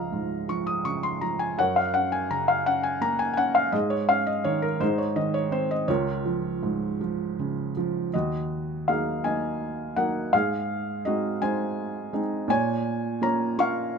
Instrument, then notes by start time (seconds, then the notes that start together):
felt piano
Already playing: C#2 F3 D#5 F5 A#5
0.12 G#2
0.48 F3 C#6
0.67 D#6
0.85 C#3 C#6
1.03 C6
1.21 F3 A#5
1.39 G#5
1.58 F#2 A#4 C#5 F#5
1.76 F5
1.94 C#4 F#5
2.12 G#5
2.31 C#3 A#5
2.48 F5
2.66 C#4 F#5
2.83 G#5
3.01 A#3 A#5
3.19 G#5
3.33 C#4 F#5 G#5
3.55 F5
3.72 G#2 G#4 D#5
3.90 C#5
4.08 C#4 F5
4.27 D#5
4.44 D#3 C#5
4.62 A#4
4.80 G#2 D#4 G#4 C5
4.98 C#5
5.16 D#3 D#5
5.34 C#5
5.51 C4 C5
5.71 D#5
5.88 C#2 F4 A#4 C#5
6.25 F3
6.63 G#2
7.01 F3
7.39 C#3
7.77 F3
8.14 D#2 F#4 D#5
8.88 F#3 A#3 D#4 G#4 F5
9.24 F#3 A#3 D#4 D#5 G#5
9.96 F#3 A#3 D#4 A#4 F#5
10.33 G#2 G#4 F5
11.05 G#3 C4 D#4 F#4 D#5
11.42 G#3 C4 D#4 C5 G#5
12.13 G#3 C4 D#4
12.48 A#2 C#5 G#5
13.21 A#3 C#4 F4 C#5 A#5
13.58 A#3 C#4 F4 F5 C#6